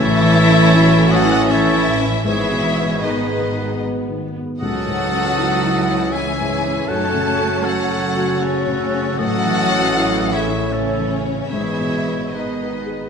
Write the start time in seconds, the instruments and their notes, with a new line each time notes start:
Already playing: felt piano A2, viola section E3 C#4, cello section E3, violin section E4 E5, flute A4, oboe C#5
0.00 double bass section A1, french horn section E3 C#4
0.23 felt piano E3
0.36 viola section A3
0.47 felt piano C#4
0.73 viola section F#3, felt piano E4
0.98 felt piano A4
1.11 viola section E3, cello section F#3, violin section F#4 F#5, flute A4, oboe D#5
1.24 felt piano E4
1.49 cello section E3, viola section E3, felt piano C#4, violin section E4 E5, flute A4, oboe C#5
1.74 felt piano E3
1.99 felt piano C#4
2.25 double bass section G#1, felt piano G#2, cello section E3, viola section G#3 B3, french horn section G#3 B3, violin section E4 E5, flute G#4, oboe C#5
2.52 felt piano B2
2.78 felt piano B3
3.04 cello section D#3, violin section D#4 D#5, felt piano G#4, flute G#4, oboe B4
3.31 felt piano B4
3.58 felt piano G#4
3.84 felt piano B3
4.09 felt piano D#3
4.36 felt piano B3
4.59 double bass section C#2, felt piano C#2, french horn section E3 C#4, cello section F#3, viola section F#3 C#4, violin section F#4 F#5, flute A4, oboe D#5
4.87 felt piano G#2
5.13 felt piano C#4
5.38 viola section D#4, felt piano E4
5.64 felt piano E4
5.76 viola section E4
5.90 felt piano E4
6.12 viola section E3 E4, cello section G#3, felt piano C#4, violin section G#4 G#5, flute C#5, oboe E5
6.40 felt piano G#2
6.51 viola section E3
6.65 felt piano C#4
6.88 double bass section F#1, felt piano F#2, french horn section F#3, viola section F#3 D#4, cello section A3, violin section A4 A5, flute C#5, oboe F#5
7.14 felt piano C#3
7.28 viola section C#4
7.40 felt piano C#4
7.63 cello section F#3, viola section A3, violin section F#4 F#5, felt piano F#4, flute A4, oboe C#5
7.91 felt piano A4
8.01 viola section A3
8.16 felt piano F#4
8.39 cello section C#3, viola section A3 C#4, violin section C#4 C#5, felt piano C#4, flute F#4, oboe A4
8.67 felt piano C#3
8.92 felt piano C#4
9.17 double bass section A1, felt piano A2, viola section E3 C#4, cello section F#3, french horn section A3 C#4, violin section F#4 F#5, flute A4, oboe D#5
9.45 felt piano E3
9.70 felt piano C#4
9.97 felt piano E4
10.21 felt piano A4
10.33 cello section E3, violin section E4 E5, flute G#4, oboe C#5
10.48 felt piano E4
10.71 cello section C#3, viola section E3 C#4, violin section C#4 C#5, felt piano C#4, flute E4, oboe A4
10.99 felt piano E3
11.26 felt piano C#4
11.51 double bass section G#1, felt piano G#2, cello section E3, french horn section G#3 B3, viola section G#3 B3, violin section E4 E5, flute G#4, oboe C#5
11.80 felt piano B2
12.07 felt piano B3
12.33 cello section D#3, viola section G#3 B3, violin section D#4 D#5, flute G#4, felt piano G#4, oboe B4
12.62 felt piano B4
12.86 felt piano G#4